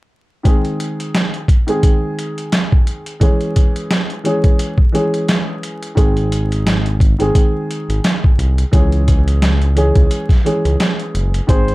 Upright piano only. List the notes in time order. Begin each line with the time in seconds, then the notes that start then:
0.43 D#3 G#3 C4 G#4
1.67 D#3 G#3 C4 G#4
3.20 E3 G#3 C#4 G#4
4.23 E3 G#3 C#4 G#4
4.92 E3 G#3 C#4 G#4
5.95 D#3 G#3 C4 G#4
7.19 D#3 G#3 C4 G#4
8.71 E3 G#3 C#4 G#4
9.75 E3 G#3 C#4 G#4
10.44 E3 G#3 C#4 G#4
11.47 D#3 G#3 C4 G#4